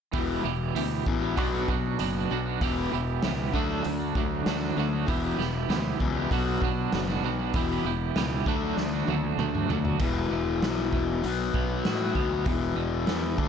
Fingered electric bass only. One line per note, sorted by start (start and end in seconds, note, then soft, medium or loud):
0.14 0.39 E1 medium
0.45 0.70 E1 medium
0.75 1.01 D2 medium
1.07 1.38 A1 medium
1.38 1.63 B1 medium
1.69 1.94 B2 medium
2.00 2.25 F#1 medium
2.31 2.56 B1 medium
2.62 2.87 E1 medium
2.93 3.18 E1 medium
3.24 3.49 C#2 medium
3.54 3.80 D2 medium
3.86 4.11 D2 medium
4.16 4.41 D2 medium
4.46 4.72 D2 medium
4.77 5.10 D2 medium
5.08 5.34 E1 medium
5.39 5.64 E1 medium
5.69 5.94 D2 medium
6.01 6.26 C#2 medium
6.31 6.57 B1 medium
6.62 6.87 B2 medium
6.93 7.18 F#1 medium
7.23 7.56 B1 medium
7.54 7.80 E1 medium
7.85 8.10 E1 medium
8.16 8.41 C#2 medium
8.47 8.72 D2 medium
8.77 9.03 D2 medium
9.08 9.33 D2 medium
9.38 9.64 D2 medium
9.69 9.95 D2 medium
10.00 10.29 E1 medium
10.31 10.60 E1 medium
10.63 10.91 B1 medium
10.93 11.21 E1 medium
11.24 11.52 B1 medium
11.54 11.83 B1 medium
11.86 12.14 A2 medium
12.16 12.44 D2 medium
12.46 12.75 E1 medium
12.76 13.05 E1 medium
13.07 13.38 E2 medium
13.38 13.48 D2 medium